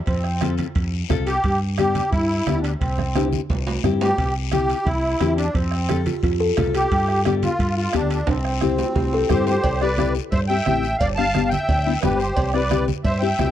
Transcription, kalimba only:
5.89 5.97 G4 medium
6.07 6.23 F4 medium
6.24 6.39 F4 medium
6.40 6.64 A4 medium
8.62 8.79 E4 medium
8.78 8.95 G4 medium
8.96 9.13 G4 medium
9.14 9.31 A4 medium
9.30 9.62 G4 medium

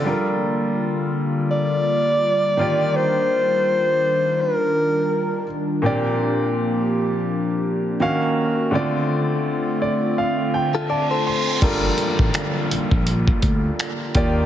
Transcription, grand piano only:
0.04 2.54 G3 medium
0.04 2.54 D4 medium
0.04 2.55 F4 medium
0.04 2.55 A4 medium
0.08 2.56 A#4 medium
2.57 5.43 D#3 medium
2.57 5.43 A#3 medium
2.57 5.44 F4 medium
2.57 5.44 G4 medium
2.61 5.45 D5 medium
5.82 7.96 A#2 medium
5.82 7.96 A#3 medium
5.82 7.97 C4 medium
5.82 7.97 G4 medium
5.86 7.98 D5 medium
8.00 8.73 D#3 medium
8.00 8.73 A#3 medium
8.00 8.73 C#4 medium
8.00 8.73 F#4 medium
8.00 8.74 F5 medium
8.71 11.57 D3 medium
8.71 11.58 A3 medium
8.71 11.58 C4 medium
8.71 11.59 F4 medium
8.75 9.80 D5 medium
9.82 10.15 D5 medium
10.18 10.51 F5 medium
10.54 10.87 G5 medium
10.90 11.24 A5 medium
11.27 11.60 C6 medium
11.62 12.98 G3 medium
11.62 12.98 D4 medium
11.62 12.98 F4 medium
11.62 12.99 A4 medium
11.62 12.99 A#4 medium
14.15 14.46 D#3 medium
14.15 14.46 A#3 medium
14.15 14.46 F4 medium
14.15 14.46 G4 medium
14.15 14.46 D5 loud

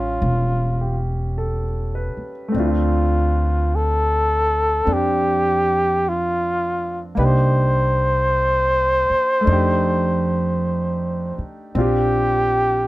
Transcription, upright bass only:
0.00 0.17 A1 medium
0.22 2.12 E1 medium
2.17 muted upright bass stroke soft
2.54 4.83 D2 medium
4.87 7.13 F2 medium
7.17 9.05 C2 medium
9.10 muted upright bass stroke soft
9.47 11.34 F2 medium
11.38 muted upright bass stroke soft
11.75 12.88 A#1 medium

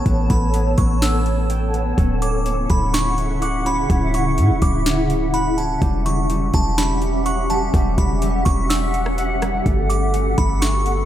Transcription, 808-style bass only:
0.06 0.29 A1 loud
0.30 0.76 A1 loud
0.78 1.94 A1 loud
1.98 2.67 D1 loud
2.70 3.86 D1 loud
3.90 4.39 D1 loud
4.38 4.51 A2 loud
4.50 4.61 D1 loud
4.62 5.78 D1 loud
5.82 6.51 E1 loud
6.54 7.70 E1 loud
7.74 7.97 E1 loud
7.98 8.44 E1 loud
8.46 9.62 E1 loud
9.66 10.35 G1 loud
10.38 11.05 G1 loud

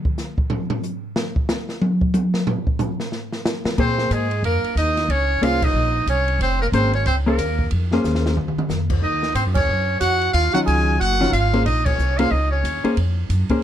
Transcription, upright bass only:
3.65 muted upright bass stroke soft
3.78 4.10 A#2 medium
4.10 4.42 G#2 medium
4.43 4.62 F2 medium
4.63 muted upright bass stroke soft
4.75 5.08 D#2 medium
5.08 5.40 C#2 medium
5.41 5.73 C2 medium
5.73 6.05 A#1 medium
6.06 6.38 C2 medium
6.39 6.71 F1 medium
6.72 7.04 G#1 medium
7.06 7.38 C#2 medium
7.38 7.70 D#2 medium
7.72 8.03 F2 medium
8.04 8.36 D#2 medium
8.37 8.56 C#2 medium
8.56 muted upright bass stroke soft
8.69 9.01 F2 medium
9.02 9.34 D#2 medium
9.35 9.46 G#2 medium
9.46 9.57 F#2 medium
9.58 9.68 D#2 medium
9.69 10.00 F#2 medium
10.01 10.33 F2 medium
10.34 10.52 D#2 medium
10.54 muted upright bass stroke soft
10.67 10.98 C#2 medium
10.99 11.31 F#1 medium
11.32 11.64 G#1 medium
11.65 11.97 A#1 medium
11.98 12.30 C2 medium
12.31 12.63 C#2 medium
12.63 12.82 D#2 medium
12.84 muted upright bass stroke soft
12.97 13.28 F2 medium
13.29 13.48 F#2 medium
13.49 muted upright bass stroke soft

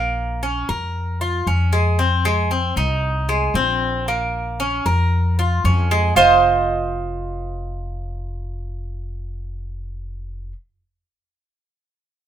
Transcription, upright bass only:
0.00 0.62 A#1 medium
0.69 1.43 F2 medium
1.47 2.71 F2 medium
2.76 3.51 C2 loud
3.54 4.79 A#1 medium
4.86 5.60 F2 medium
5.64 6.11 F2 loud
6.16 10.51 F1 medium

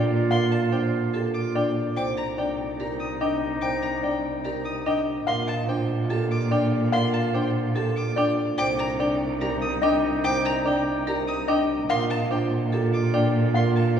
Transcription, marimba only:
0.00 0.16 D4 medium
0.31 0.58 A#4 medium
0.73 0.99 D4 medium
1.14 1.41 A4 medium
1.56 1.82 D4 medium
1.97 2.24 C5 medium
2.38 2.65 D4 medium
2.80 3.06 A#4 medium
3.21 3.48 D4 medium
3.62 3.89 C5 medium
4.04 4.30 D4 medium
4.45 4.72 A#4 medium
4.86 5.13 D4 medium
5.28 5.54 A#4 medium
5.69 5.96 D4 medium
6.10 6.37 A4 medium
6.52 6.79 D4 medium
6.93 7.20 A#4 medium
7.34 7.61 D4 medium
7.76 8.03 A4 medium
8.17 8.44 D4 medium
8.59 8.86 C5 medium
9.00 9.27 D4 medium
9.42 9.68 A#4 medium
9.83 10.10 D4 loud
10.24 10.51 C5 medium
10.66 10.92 D4 medium
11.07 11.34 A#4 medium
11.48 11.75 D4 loud
11.90 12.17 A#4 medium
12.31 12.58 D4 medium
12.72 12.99 A4 medium
13.14 13.41 D4 medium
13.55 13.82 A#4 medium

